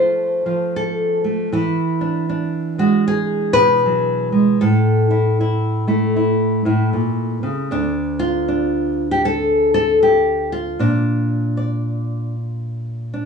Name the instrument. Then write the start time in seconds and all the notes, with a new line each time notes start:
nylon-string guitar
Already playing: F3 A3 C5
0.00 F4
0.46 F3 F4
0.76 A4
1.24 A3
1.52 E3 E4
2.01 D4
2.29 D4
2.78 G#3 F#4
3.08 G#4
3.53 B2 B4
3.85 F#3
4.32 G#3
4.61 A2 A4
5.11 E4
5.41 E4
5.87 A3 E4
6.17 E4
6.65 A2 E4
6.93 A#2
7.43 C#3
7.71 D2 D4
8.19 F4
8.48 D4
9.11 G4
9.25 A4
9.74 A4
10.03 G4
10.52 F4
10.79 A#2 D4
11.57 D5
13.14 D4